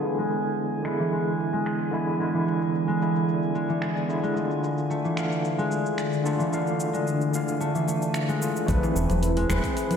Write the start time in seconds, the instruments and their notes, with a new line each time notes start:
Already playing: harp B3 G#4, synth texture G#5
0.01 tine electric piano D3 G#3 E4, analog synth pad E3 B3 G#4 D5, shaker
0.18 harp G#3, shaker
0.32 shaker
0.46 shaker
0.59 shaker
0.73 shaker
0.83 tine electric piano D3 G#3, harp G#3, finger snap, shaker
0.87 tine electric piano E4
0.99 harp E3, shaker
1.12 harp G#3, shaker
1.27 shaker
1.40 shaker
1.53 harp G#3, shaker
1.66 finger snap, shaker
1.81 shaker
1.92 tine electric piano D3 G#3 E4, shaker
2.08 shaker
2.18 tine electric piano D3 G#3, harp G#3, shaker
2.22 tine electric piano E4
2.34 harp E3, shaker
2.47 harp G#3, shaker
2.62 shaker
2.75 shaker
2.88 harp G#3, shaker
2.99 tine electric piano D3 G#3 E4, shaker
3.16 shaker
3.29 shaker
3.43 shaker
3.55 harp G#3, shaker
3.69 harp E3, shaker
3.82 harp G#3, finger snap, shaker
3.97 shaker
4.08 tine electric piano D3 G#3 E4, shaker
4.23 harp G#3, shaker
4.34 tine electric piano D3 A3, analog synth pad D3, shaker
4.38 tine electric piano F4
4.51 shaker
4.64 shaker
4.78 shaker
4.90 harp A3, shaker
5.04 harp E3, shaker
5.15 tine electric piano D3, harp A3, finger snap, shaker
5.19 tine electric piano F5
5.32 shaker
5.45 shaker
5.58 harp G#3, shaker
5.72 shaker
5.86 shaker
5.98 finger snap, shaker
6.13 shaker
6.24 tine electric piano D3 A3 F4, harp A3, shaker
6.39 harp E3, shaker
6.50 tine electric piano D3, harp A3, shaker
6.54 tine electric piano F5
6.67 shaker
6.80 shaker
6.93 harp G#3, shaker
7.07 shaker
7.21 shaker
7.32 tine electric piano D3 F5, shaker
7.48 shaker
7.60 harp A3, shaker
7.75 harp E3, shaker
7.87 harp A3, shaker
8.02 shaker
8.14 finger snap, shaker
8.29 harp G#3, shaker
8.40 tine electric piano D3 A3 F4, shaker
8.56 shaker
8.66 analog synth bass A1, tine electric piano A3 C4 B4, harp A3, analog synth pad C4 E4 B4, kick, open hi-hat, low conga, shaker
8.83 harp E3, djembe slap, shaker
8.95 analog synth bass E1, harp A3, shaker
9.10 analog synth bass E1, open hi-hat, low conga, shaker
9.23 open hi-hat, shaker
9.37 harp G#3, open hi-hat, djembe tone
9.49 analog synth bass E1, tine electric piano C4 B4, finger snap, low conga, djembe bass, shaker
9.64 kick, open hi-hat, shaker
9.77 open hi-hat, shaker
9.91 open hi-hat, low conga, shaker